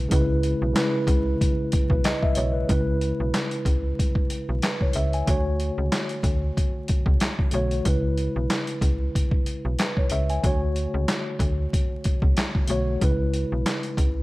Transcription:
Already playing: tine electric piano C#3 G#3 E4 B4
0.08 fm bass C#2, tine electric piano C#3 G#3 E4, kick, closed hi-hat
0.13 tine electric piano B4
0.43 closed hi-hat
0.62 fm bass B1
0.73 tine electric piano C#3 G#3 E4, snare, clap, closed hi-hat
0.77 tine electric piano B4
1.07 fm bass C#2, kick, closed hi-hat
1.41 kick, closed hi-hat
1.72 kick, closed hi-hat
1.90 fm bass B1, tine electric piano B4, kick
2.04 tine electric piano D#5, snare, clap, closed hi-hat
2.22 tine electric piano E5, kick
2.35 fm bass B1, tine electric piano C#5, closed hi-hat
2.54 tine electric piano B4
2.67 fm bass C#2, tine electric piano C#3 G#3 E4, kick, closed hi-hat
2.72 tine electric piano B4
3.01 closed hi-hat
3.20 fm bass B1
3.34 snare, clap, closed hi-hat
3.51 closed hi-hat
3.65 fm bass C#2, kick, closed hi-hat
3.99 kick, closed hi-hat
4.15 kick
4.30 closed hi-hat
4.49 fm bass B1
4.62 tine electric piano B4, snare, clap, closed hi-hat
4.81 tine electric piano C#5, kick
4.93 fm bass C#2, tine electric piano E5, closed hi-hat
5.13 tine electric piano G#5, closed hi-hat
5.26 fm bass D2, tine electric piano D3 A3 F#4, kick, closed hi-hat
5.30 tine electric piano C#5
5.60 closed hi-hat
5.78 fm bass C#2
5.92 snare, clap, closed hi-hat
6.09 closed hi-hat
6.23 fm bass D2, kick, closed hi-hat
6.57 kick, closed hi-hat
6.88 kick, closed hi-hat
7.06 fm bass C#2, kick
7.20 snare, clap, closed hi-hat
7.39 kick
7.51 fm bass B1, tine electric piano D3 A3 F#4, closed hi-hat
7.55 tine electric piano C#5
7.71 closed hi-hat
7.84 fm bass C#2, tine electric piano C#3 G#3 E4, kick, closed hi-hat
7.88 tine electric piano B4
8.18 closed hi-hat
8.36 fm bass B1
8.50 snare, clap, closed hi-hat
8.67 closed hi-hat
8.81 fm bass C#2, kick, closed hi-hat
9.15 kick, closed hi-hat
9.31 kick
9.46 closed hi-hat
9.65 fm bass B1
9.79 tine electric piano B4, snare, clap, closed hi-hat
9.97 tine electric piano C#5, kick
10.10 fm bass C#2, tine electric piano E5, closed hi-hat
10.30 tine electric piano G#5, closed hi-hat
10.42 fm bass D2, tine electric piano D3 A3 F#4, kick, closed hi-hat
10.46 tine electric piano C#5
10.76 closed hi-hat
10.94 fm bass C#2
11.08 snare, clap, closed hi-hat
11.39 fm bass D2, kick, closed hi-hat
11.73 kick, closed hi-hat
12.04 kick, closed hi-hat
12.22 fm bass C#2, kick
12.37 snare, clap, closed hi-hat
12.55 kick
12.67 fm bass B1, tine electric piano D3 A3 F#4, closed hi-hat
12.71 tine electric piano C#5
13.00 fm bass C#2, tine electric piano C#3 G#3 E4, kick, closed hi-hat
13.04 tine electric piano B4
13.34 closed hi-hat
13.52 fm bass B1
13.66 snare, clap, closed hi-hat
13.83 closed hi-hat
13.97 fm bass C#2, kick, closed hi-hat

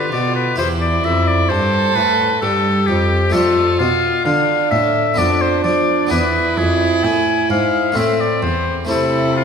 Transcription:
Already playing: cello D3, harpsichord F4 G4, violin F4, oboe B4
0.12 cello B2, harpsichord B2, oboe D5
0.35 oboe B4
0.56 cello E2, harpsichord E2 E4 G4, violin E4, oboe C5
0.81 oboe D5
1.04 harpsichord F2, cello F2, oboe E5
1.27 oboe D5
1.49 cello G2, harpsichord G2, violin A4, oboe C5
1.95 cello A2, harpsichord A2, oboe B4
2.41 cello G2, harpsichord G2, violin G4, oboe A4
2.87 cello F2, harpsichord F2, oboe G4
3.30 cello F2, harpsichord A3 D4 F4, oboe A4
3.34 harpsichord F2, violin F4
3.79 cello B2, harpsichord B2, oboe F4
4.25 cello D3, harpsichord D3, violin D4, oboe F5
4.71 cello A2, harpsichord A2, oboe E5
5.14 cello F2, harpsichord B3 D4 A4, violin D4, oboe D5
5.18 harpsichord F2
5.42 oboe C5
5.64 cello F3, harpsichord F3, oboe D5
6.07 cello E2, harpsichord B3 D4 G#4
6.11 harpsichord E2, violin E4, oboe B4
6.57 cello F2, harpsichord F2, oboe G#4
7.03 cello A2, harpsichord A2, oboe G#5
7.50 cello G#2, harpsichord G#2, oboe F5
7.92 cello A2, harpsichord A3 C4 E4
7.96 harpsichord A2, violin C4, oboe E5
8.20 oboe D5
8.42 cello E2, harpsichord E2, oboe C5
8.85 harpsichord A3 C4 E4, violin E4
8.89 cello C3, harpsichord C3, oboe A4
9.36 oboe F4

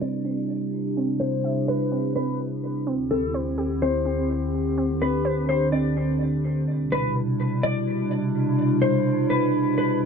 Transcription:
Already playing: ambient pad C3 G3 D4 E4 G4, synth pluck B4 C5
0.01 synth pluck C4, clean electric guitar D5
0.25 synth pluck C4
0.97 synth pluck C4
1.20 synth pluck C4, clean electric guitar C5
1.44 synth pluck E5
1.68 synth pluck B4, clean electric guitar B4
1.92 synth pluck C4
2.16 synth pluck C4, clean electric guitar B4
2.87 ambient pad D2 D3 C4 E4 G4, synth pluck C4
3.11 synth pluck C4, clean electric guitar A4
3.34 synth pluck C5
3.58 synth pluck G4
3.82 synth pluck C4, clean electric guitar C5
4.06 synth pluck C4
4.78 synth pluck C4, ambient pad D4
5.02 synth pluck C4, clean electric guitar B4
5.25 synth pluck C5
5.49 synth pluck G4, clean electric guitar C5
5.72 synth pluck C4, clean electric guitar D5
5.97 synth pluck C4
6.68 ambient pad B2 C3 G3 D4 E4
6.92 clean electric guitar B4
7.63 clean electric guitar D5
8.82 clean electric guitar C5
9.30 clean electric guitar B4
9.78 clean electric guitar B4

